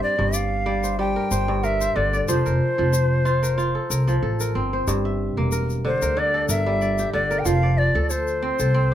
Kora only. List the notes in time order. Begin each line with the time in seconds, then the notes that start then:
Already playing: G2 C4 A4 A#4 C5 D5
0.18 G2
0.33 D5
0.66 G3 D5
0.84 C5
0.99 G3
1.16 A#4
1.31 C5
1.48 G2
1.63 A#4
1.81 C5
1.96 D3
2.13 D5
2.28 F3 C5
2.46 A#4
2.78 F3
2.93 C5
3.25 F4 C5
3.43 A#4
3.58 F4
3.75 A4
3.90 A#4
4.07 F3
4.22 A4
4.40 A#4
4.55 C4
4.73 C5
4.88 G2
5.05 E5
5.38 A#3
5.52 A#4
5.85 D3
6.02 A#4
6.17 D3
6.34 A4
6.49 A#4
6.66 G3
6.82 D5
6.99 G4
7.13 D3
7.31 A#4
7.45 F3
7.63 D5
7.95 A4
8.10 A4
8.42 C4
8.60 A4
8.74 C4